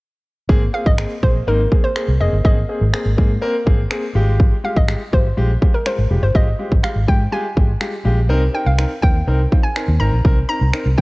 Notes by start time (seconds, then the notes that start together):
0.49 G#1 A#3 C4 G#4, kick
0.73 A#3 C4 G#4 F5
0.86 G#1 D#5, kick
0.98 A#3 C4 G#4, finger snap
1.23 A#1 A#3 C4 G#4 C5, kick
1.47 G#1 A#3 C4 D#4 A#4
1.71 A#3 C4 G#4, kick
1.84 C5
1.96 A#3 C4 G#4, finger snap
2.08 C2
2.20 F1 A#3 C4 G#4 D#5
2.32 G1
2.44 A#3 C4 G#4 D#5, kick
2.68 A#3 C4 G#4
2.81 G#1
2.93 A#3 C4 G#4, finger snap
3.05 G#1
3.17 G#2 A#3 C4 G#4, kick
3.41 A#3 C4 A#4
3.66 G#1 A#3 C4 G#4, kick
3.91 A#3 C4 G#4, finger snap
4.15 G#1 G#3 F4 G4
4.40 kick
4.64 G#3 F4 G4 F5
4.77 G#1 D#5, kick
4.88 G#3 F4 G4, finger snap
5.12 G#1 G#3 F4 G4 C5, kick
5.37 A#1 G#3 F4 G4
5.61 G#3 F4 G4, kick
5.74 A#4
5.86 G#3 F4 A#4 C5, finger snap
5.98 G#1
6.10 F1 G#3 F4 G4
6.22 G1 C5
6.34 G#3 F4 G4 D#5, kick
6.59 G#3 F4 G4
6.72 G#1, kick
6.83 G#3 F4 G4 F5, finger snap
6.96 G#1
7.08 G#2 G#3 F4 G4 G5, kick
7.32 G#3 F4 G4 G#5
7.56 G#1 G#3 F4 G4, kick
7.81 G#3 F4 G4, finger snap
8.05 A#1 G#3 F4 G4
8.29 C2 C4 D#4 A#4
8.54 C4 D#4 A#4 G5
8.66 C2 F5
8.78 C4 D#4 A#4, finger snap
9.02 D#2 C4 D#4 A#4 G5, kick
9.27 C2 C4 D#4 A#4
9.52 C4 D#4 F4, kick
9.63 G#5
9.76 C4 D#4 A#4, finger snap
9.88 D#2
10.00 G#1 C4 D#4 A#4 A#5
10.13 A#1
10.25 C4 D#4 A#4, kick
10.49 C4 D#4 A#4 A#5
10.61 C2
10.74 C4 D#4 A#4, finger snap
10.86 C2
10.98 C4 G5